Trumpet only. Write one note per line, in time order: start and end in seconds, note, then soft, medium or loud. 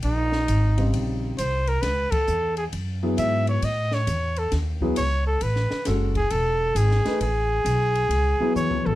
0.05 0.90 D#4 loud
1.38 1.70 C5 medium
1.68 1.83 A#4 medium
1.81 2.13 B4 loud
2.11 2.57 A4 medium
2.58 2.65 G#4 medium
3.18 3.45 E5 medium
3.49 3.66 C#5 medium
3.65 3.95 D#5 loud
3.94 4.40 C#5 medium
4.38 4.53 A4 medium
4.98 5.25 C#5 loud
5.27 5.44 A4 medium
5.42 5.87 B4 medium
6.16 6.33 G#4 loud
6.31 6.78 A4 loud
6.77 7.21 G#4 loud
7.22 8.52 G#4 loud
8.56 8.88 C#5 loud
8.86 8.95 A4 medium